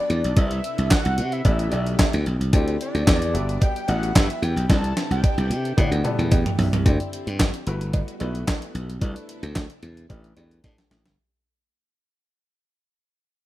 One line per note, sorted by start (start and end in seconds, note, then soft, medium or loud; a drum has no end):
0.00 0.35 G3 medium
0.00 0.21 B3 medium
0.00 0.21 F#4 medium
0.00 0.21 G4 medium
0.00 0.21 A4 medium
0.00 0.21 B4 loud
0.00 1.42 B4 medium
0.00 0.38 D5 loud
0.00 0.35 F#5 medium
0.10 0.22 E2 medium
0.10 closed hi-hat medium
0.24 0.35 B1 medium
0.24 closed hi-hat medium
0.36 0.59 C2 loud
0.36 1.44 C3 medium
0.36 1.22 C4 medium
0.36 1.43 D4 medium
0.36 1.44 E4 medium
0.36 1.23 E4 medium
0.36 1.44 A4 medium
0.36 1.23 A4 medium
0.36 1.23 B4 medium
0.36 1.23 D5 medium
0.36 0.91 E5 loud
0.36 kick loud
0.36 closed hi-hat loud
0.36 cowbell medium
0.51 closed hi-hat medium
0.64 closed hi-hat medium
0.78 0.89 C2 medium
0.78 closed hi-hat medium
0.90 1.34 F#5 loud
0.90 kick loud
0.90 snare loud
0.90 clap medium
0.90 closed hi-hat medium
0.90 cowbell medium
1.05 1.20 C2 loud
1.05 closed hi-hat medium
1.18 1.41 C3 loud
1.18 closed hi-hat medium
1.32 2.14 E5 loud
1.32 closed hi-hat soft
1.44 1.68 A1 loud
1.44 2.52 A3 medium
1.44 1.67 B3 medium
1.44 2.52 D4 medium
1.44 1.67 E4 medium
1.44 2.51 G4 medium
1.44 1.67 G4 medium
1.44 1.67 A4 medium
1.44 1.67 D5 medium
1.44 kick loud
1.44 closed hi-hat loud
1.44 cowbell medium
1.59 closed hi-hat medium
1.72 1.95 B1 medium
1.72 2.37 B3 medium
1.72 2.37 E4 medium
1.72 2.37 G4 medium
1.72 2.37 A4 medium
1.72 2.37 D5 medium
1.72 closed hi-hat medium
1.72 cowbell medium
1.87 closed hi-hat medium
1.99 kick loud
1.99 snare loud
1.99 clap medium
1.99 closed hi-hat loud
1.99 cowbell medium
2.13 2.24 D2 medium
2.13 closed hi-hat medium
2.26 2.38 B1 medium
2.26 closed hi-hat medium
2.41 2.51 C2 medium
2.41 closed hi-hat medium
2.52 2.76 D2 loud
2.52 3.33 D3 medium
2.52 3.34 C4 loud
2.52 3.33 C4 medium
2.52 3.33 E4 medium
2.52 3.34 E4 medium
2.52 3.33 G4 medium
2.52 3.33 A4 medium
2.52 3.34 D5 loud
2.52 kick loud
2.52 closed hi-hat loud
2.52 cowbell medium
2.68 closed hi-hat medium
2.81 3.64 D5 loud
2.81 closed hi-hat medium
2.95 3.05 D2 medium
2.95 closed hi-hat medium
3.07 3.36 E2 loud
3.07 kick loud
3.07 snare loud
3.07 clap medium
3.07 closed hi-hat medium
3.07 cowbell medium
3.22 closed hi-hat medium
3.34 3.57 G1 loud
3.34 4.68 G3 medium
3.34 3.78 B3 medium
3.34 3.78 F#4 medium
3.34 3.78 G4 medium
3.34 3.78 A4 medium
3.34 5.75 B4 medium
3.34 3.78 E5 medium
3.34 4.68 F#5 medium
3.34 closed hi-hat medium
3.49 closed hi-hat soft
3.61 3.89 G5 loud
3.61 kick loud
3.61 closed hi-hat medium
3.61 cowbell medium
3.76 closed hi-hat medium
3.88 4.11 A1 medium
3.88 4.53 B3 medium
3.88 4.53 F#4 medium
3.88 4.53 G4 medium
3.88 4.53 A4 medium
3.88 4.53 E5 medium
3.88 4.18 F#5 loud
3.88 closed hi-hat medium
3.88 cowbell medium
4.03 closed hi-hat medium
4.15 4.27 G2 loud
4.15 4.45 E5 medium
4.15 kick loud
4.15 snare loud
4.15 clap medium
4.15 closed hi-hat loud
4.15 cowbell medium
4.30 closed hi-hat medium
4.42 4.54 E2 medium
4.42 4.71 G5 loud
4.42 closed hi-hat medium
4.56 4.67 B1 loud
4.56 closed hi-hat medium
4.69 4.92 C2 loud
4.69 5.77 C3 medium
4.69 5.55 C4 medium
4.69 6.84 D4 medium
4.69 5.55 E4 medium
4.69 5.76 E4 medium
4.69 5.76 A4 medium
4.69 5.55 A4 medium
4.69 5.55 B4 medium
4.69 5.55 D5 medium
4.69 5.11 A5 loud
4.69 kick loud
4.69 snare medium
4.69 closed hi-hat loud
4.69 cowbell medium
4.84 closed hi-hat medium
4.97 snare medium
4.97 closed hi-hat medium
5.11 5.21 C2 medium
5.11 5.81 G5 loud
5.11 closed hi-hat medium
5.24 kick loud
5.24 closed hi-hat medium
5.24 cowbell medium
5.38 5.52 C2 loud
5.38 closed hi-hat medium
5.50 5.73 C3 loud
5.50 closed hi-hat medium
5.65 closed hi-hat soft
5.77 5.90 A2 loud
5.77 6.85 A3 medium
5.77 5.99 B3 loud
5.77 5.99 E4 medium
5.77 5.99 G4 medium
5.77 6.84 G4 medium
5.77 6.00 A4 medium
5.77 6.00 D5 loud
5.77 6.15 F#5 loud
5.77 kick loud
5.77 closed hi-hat medium
5.77 mid tom loud
5.77 cowbell medium
5.91 6.02 D2 medium
5.91 closed hi-hat medium
5.91 mid tom medium
6.04 6.69 B3 loud
6.04 6.69 E4 medium
6.04 6.69 G4 medium
6.04 6.69 A4 medium
6.04 6.69 D5 loud
6.04 6.30 A5 medium
6.04 closed hi-hat medium
6.04 mid tom medium
6.04 cowbell medium
6.19 6.29 E2 medium
6.19 closed hi-hat soft
6.19 mid tom medium
6.31 6.44 E2 loud
6.31 6.57 G5 medium
6.31 kick loud
6.31 closed hi-hat loud
6.31 cowbell medium
6.46 closed hi-hat medium
6.46 floor tom medium
6.58 6.70 B1 medium
6.58 6.84 E5 medium
6.58 floor tom loud
6.58 open hi-hat medium
6.73 6.83 C2 medium
6.73 closed hi-hat medium
6.73 floor tom loud
6.85 6.98 D2 loud
6.85 7.66 D3 medium
6.85 7.66 C4 medium
6.85 7.67 C4 medium
6.85 7.66 E4 medium
6.85 7.65 E4 medium
6.85 7.66 G4 medium
6.85 7.67 G4 medium
6.85 7.67 D5 loud
6.85 kick loud
6.85 closed hi-hat loud
6.85 cowbell medium
7.00 closed hi-hat medium
7.13 closed hi-hat medium
7.27 7.49 G2 medium
7.27 closed hi-hat medium
7.39 kick loud
7.39 snare loud
7.39 clap medium
7.39 closed hi-hat medium
7.39 cowbell medium
7.54 closed hi-hat medium
7.66 8.01 G1 loud
7.66 9.00 G3 medium
7.66 8.11 A3 loud
7.66 10.07 B3 medium
7.66 8.11 E4 medium
7.66 9.00 F#4 medium
7.66 8.11 F#4 medium
7.66 8.11 B4 loud
7.66 closed hi-hat medium
7.81 closed hi-hat medium
7.93 kick loud
7.93 closed hi-hat medium
7.93 cowbell medium
8.08 closed hi-hat medium
8.20 8.43 B1 medium
8.20 8.85 A3 medium
8.20 8.85 E4 medium
8.20 8.86 F#4 medium
8.20 8.86 B4 loud
8.20 closed hi-hat medium
8.20 cowbell medium
8.35 closed hi-hat medium
8.47 kick loud
8.47 snare loud
8.47 clap loud
8.47 closed hi-hat medium
8.47 cowbell medium
8.62 closed hi-hat medium
8.75 8.97 B1 medium
8.75 closed hi-hat medium
8.90 closed hi-hat medium
9.01 9.14 C2 loud
9.01 10.09 C3 medium
9.01 9.87 A3 medium
9.01 9.87 D4 medium
9.01 11.16 D4 medium
9.01 9.88 E4 medium
9.01 10.09 E4 medium
9.01 10.09 A4 medium
9.01 9.88 B4 loud
9.01 kick loud
9.01 closed hi-hat loud
9.01 cowbell medium
9.16 closed hi-hat medium
9.29 closed hi-hat medium
9.43 9.65 D2 medium
9.43 closed hi-hat medium
9.55 kick loud
9.55 snare loud
9.55 clap medium
9.55 closed hi-hat medium
9.55 cowbell medium
9.70 closed hi-hat medium
9.83 10.05 E2 loud
9.83 closed hi-hat medium
9.97 closed hi-hat medium
10.09 10.32 A1 medium
10.09 10.32 A3 loud
10.09 11.17 A3 medium
10.09 10.32 D4 medium
10.09 10.32 G4 medium
10.09 11.17 G4 medium
10.09 10.32 B4 loud
10.09 kick loud
10.09 closed hi-hat medium
10.09 cowbell medium
10.24 closed hi-hat soft
10.36 10.59 E2 medium
10.36 11.01 A3 medium
10.36 11.02 D4 medium
10.36 11.02 G4 medium
10.36 11.02 B4 loud
10.36 10.62 B5 medium
10.36 closed hi-hat medium
10.36 cowbell medium
10.51 closed hi-hat soft
10.63 10.76 A2 loud
10.63 10.89 A5 medium
10.63 kick loud
10.63 snare medium
10.63 closed hi-hat medium
10.63 cowbell medium
10.78 snare medium
10.78 closed hi-hat medium
10.90 11.03 A1 medium
10.90 11.16 E5 medium
10.90 snare medium
10.90 closed hi-hat medium
11.05 11.16 G1 medium
11.05 snare medium
11.05 closed hi-hat medium